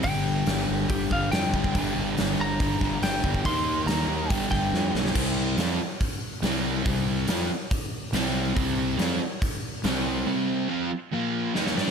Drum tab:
CC |----------------|----------------|----------------|x---------------|
HH |o---o---o---o---|o---o---o---o---|o---o---o-------|----o---o---o---|
SD |----o-------o---|----o-----o-o---|----o-----o-o-oo|----o-------o---|
BD |o-------o-o---oo|o-------o-o---oo|o-------o-o-----|o-------o-------|

CC |----------------|----------------|----------------|
HH |o---o---o---o---|o---o---o---o---|----------------|
SD |----o-------o---|----o-------o---|------------ooo-|
BD |o-------o-------|o-------o-------|----------------|